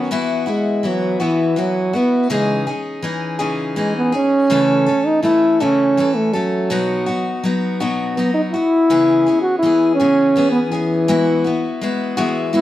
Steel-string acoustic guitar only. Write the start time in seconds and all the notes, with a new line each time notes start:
Already playing: F#3 B3 C#4 F#4
0.11 E3 B3 E4 F#4
0.46 B3 E4 F#4
0.83 E3 B3 E4 F#4
1.20 E3 B3 E4 F#4
1.56 E3 B3 E4 F#4
1.93 B3 E4 F#4
2.30 C#3 E3 C#4 D#4 G#4
2.67 C#4 D#4 G#4
3.02 E3 C#4 D#4 G#4
3.39 C#3 E3 C#4 D#4 G#4
3.76 E3 C#4 D#4 G#4
4.12 C#4 D#4 G#4
4.50 C#3 E3 A3 C#4 A4
4.86 A3 C#4 A4
5.23 E3 A3 C#4 A4
5.60 C#3 E3 A3 C#4 A4
5.97 E3 A3 C#4 A4
6.33 A3 C#4 A4
6.70 B2 F#3 B3 D#4 F#4
7.06 B3 D#4 F#4
7.44 F#3 B3 D#4 F#4
7.80 B2 F#3 B3 D#4 F#4
8.17 F#3 B3 D#4 F#4
8.54 B3 F#4
8.90 C#3 E3 B3 C#4 G#4
9.27 B3 C#4 G#4
9.63 E3 B3 C#4 G#4
10.00 C#3 E3 B3 C#4 G#4
10.36 E3 B3 C#4 G#4
10.72 B3 C#4 G#4
11.08 E3 G#3 B3 E4 F#4
11.44 B3 E4 F#4
11.81 G#3 B3 E4 F#4
12.17 E3 G#3 B3 E4 F#4
12.53 G#3 B3 E4 F#4